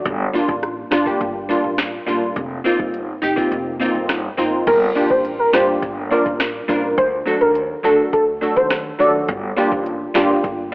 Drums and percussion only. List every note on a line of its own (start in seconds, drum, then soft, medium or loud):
0.05 kick loud
0.05 closed hi-hat medium
0.49 kick medium
0.63 cross-stick medium
0.63 closed hi-hat medium
0.92 cross-stick medium
0.92 snare loud
1.07 kick medium
1.21 kick medium
1.21 closed hi-hat medium
1.78 cross-stick medium
1.78 snare loud
1.78 closed hi-hat medium
2.36 kick loud
2.36 closed hi-hat medium
2.79 kick medium
2.94 closed hi-hat medium
3.37 kick medium
3.52 closed hi-hat medium
4.09 cross-stick medium
4.09 snare loud
4.09 closed hi-hat medium
4.67 kick loud
4.67 closed hi-hat medium
4.67 crash loud
5.10 kick loud
5.25 closed hi-hat medium
5.53 cross-stick medium
5.53 snare loud
5.82 kick medium
5.82 closed hi-hat medium
6.26 kick loud
6.40 cross-stick medium
6.40 snare loud
6.40 closed hi-hat medium
6.69 kick loud
6.98 kick loud
6.98 closed hi-hat medium
7.55 closed hi-hat medium
8.13 kick medium
8.13 closed hi-hat medium
8.57 kick loud
8.71 cross-stick medium
8.71 snare loud
8.71 closed hi-hat medium
9.29 kick loud
9.29 closed hi-hat medium
9.72 kick loud
9.86 closed hi-hat medium
10.15 cross-stick medium
10.15 snare loud
10.44 kick loud
10.44 closed hi-hat medium